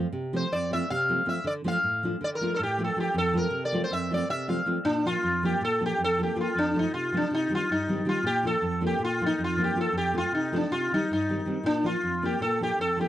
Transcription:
0.12 C3
0.33 F3 A3 C4 F4 C5
0.52 F2 D5
0.71 F3 A3 C4 F4 E5
0.90 C3 F5
1.09 F3 A3 C4 F4
1.25 F3 A3 C4 F4 E5
1.44 D3 D5
1.64 F3 A3 D4 F4 F5
1.83 A2
2.03 F3 A3 D4 F4
2.21 D3 D5
2.35 A#4
2.41 F3 A3 D4 F4
2.54 A4 A#4
2.59 A2 A4
2.63 G4
2.78 F3 A3 D4 F4
2.84 A4
2.96 F3 A3 D4 F4 G4
3.14 F2 A4
3.33 F3 A3 C4 F4 A#4
3.51 C3
3.65 D5
3.72 F3 A3 C4 F4
3.84 C5
3.91 F2 E5
4.11 F3 A3 C4 F4 D5
4.30 C3 E5
4.48 F3 A3 C4 F4 F5
4.66 F3 A3 C4 F4
4.85 A#2 D4
5.05 F3 A#3 D4 F4
5.23 F2
5.43 F3 A#3 D4 F4 G4
5.61 A#2 A4
5.80 F3 A#3 D4 F4
5.86 G4
5.99 F2
6.04 A4
6.18 F3 A#3 D4 F4
6.23 G4
6.35 F3 A#3 D4 F4
6.41 F4
6.55 F2 D4
6.75 F3 A3 C4 F4
6.79 D#4
6.93 C3 F4
7.12 F3 A3 C4 F4
7.17 D4
7.31 C3 D#4
7.49 D#3 G3 C4 D#4
7.55 F4
7.70 G2 D#4
7.88 D#3 G3 C4 D#4
8.05 D#3 G3 C4 D#4 F4
8.23 A#2 G4
8.43 F3 A#3 D4 F4 A4
8.62 F2
8.81 F3 A#3 D4 F4
8.87 G4
8.99 A#2
9.04 F4
9.20 F3 A#3 D4 F4
9.26 D#4
9.38 F2
9.44 F4
9.57 F3 A#3 D4 F4
9.64 G4
9.75 F3 A#3 D4 F4
9.81 A4
9.92 F2
9.98 G4
10.13 F3 A3 C4 F4
10.18 F4
10.32 C3 D#4
10.52 F3 A3 C4 D4 F4
10.71 C3 F4
10.92 D#3 G3 C4 D#4
11.11 G2 D#4
11.29 D#3 G3 C4 D#4
11.45 D#3 G3 C4 D#4
11.63 A#2 D4
11.83 F3 A#3 D4 F4
12.03 F2
12.22 F3 A#3 D4 F4 G4
12.40 A#2 A4
12.60 F3 A#3 D4 F4 G4
12.79 F2 A4
12.97 F3 A#3 D4 F4 G4

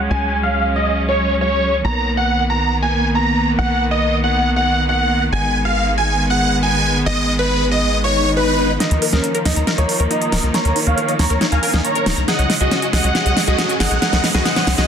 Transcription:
Already playing: F#3 G#3 C#4
0.11 C#2 G#5
0.43 F5
0.76 D#5
1.09 C#5
1.41 C#5
1.85 B1 D#3 A#3 B3 A#5
2.17 F#5
2.50 A#5
2.82 G#5
3.15 A#5
3.59 B1 F#5
3.91 D#5
4.24 F#5
4.56 F#5
4.89 F#5
5.32 G#1 G#3 B3 G#5
5.65 F5
5.98 G#5
6.30 F#5
6.63 G#5
7.06 G#1 D#5
7.39 B4
7.71 D#5
7.93 swell
8.04 C#5
8.37 B4
8.80 D#3 F3 A#3 D#4 A#4 D#5, snare, closed hi-hat, riser
8.91 D#2 A#5, closed hi-hat
9.02 A#4, open hi-hat
9.13 D#2 C#4 A#4 D#5, snare, closed hi-hat
9.24 closed hi-hat
9.35 A#4, closed hi-hat
9.45 D#2 D#4 A#4 D#5, snare, open hi-hat
9.56 D#2 A#5, closed hi-hat
9.67 A#4, snare, closed hi-hat
9.78 D#2 A#4 C#5 D#5, closed hi-hat
9.89 open hi-hat
10.00 D#2 A#4, closed hi-hat
10.11 D#4 A#4 D#5, closed hi-hat
10.22 A#5, closed hi-hat
10.32 D#1 A#4, snare, open hi-hat
10.43 C#2 D#5, closed hi-hat
10.54 C#5 A#5, snare, closed hi-hat
10.65 D#2 A#4, closed hi-hat
10.76 D#4, open hi-hat
10.87 D#2 C#5 F5 A#5, closed hi-hat
10.98 A#4, closed hi-hat
11.08 D#5, closed hi-hat
11.19 D#2 C#5 A#5, snare, open hi-hat
11.30 D#2 A#4, closed hi-hat
11.41 D#4, snare, closed hi-hat
11.52 D#2 F5 G#5 A#5, closed hi-hat
11.63 A#4, open hi-hat
11.74 D#2 D#5, snare
11.85 C#5 A#5, closed hi-hat
11.95 A#4, closed hi-hat
12.06 D#1 D#4, snare, open hi-hat
12.17 C#2 A#5, closed hi-hat
12.28 C#3 F#3 G#3 G#4 D#5 F#5, snare, closed hi-hat
12.39 C#2 C#5, closed hi-hat
12.50 snare, open hi-hat
12.61 C#2 F#4 G#4 D#5, closed hi-hat
12.71 C#4, snare, closed hi-hat
12.82 G#5, closed hi-hat
12.93 C#2 G#4 D#5 F#5, snare, open hi-hat
13.04 C#2 C#5, closed hi-hat
13.15 G#4 D#5 F#5, snare, closed hi-hat
13.26 C#2 C#5, closed hi-hat
13.37 snare, open hi-hat
13.48 C#2 F#4 G#4 D#5, closed hi-hat
13.58 C#4, snare, closed hi-hat
13.69 G#5, closed hi-hat
13.80 G#1 G#4 D#5 F#5, snare, open hi-hat
13.91 B1 C#5, closed hi-hat
14.02 G#4 D#5 F#5, snare, closed hi-hat
14.13 C#2 C#5, snare, closed hi-hat
14.24 snare, open hi-hat
14.34 C#2 F#4 G#4 D#5, snare, closed hi-hat
14.45 G#4 D#5 F#5, snare, closed hi-hat
14.56 C#5, snare, closed hi-hat
14.67 C#2, snare, open hi-hat
14.78 C#2 F#4 G#4 D#5, snare, closed hi-hat

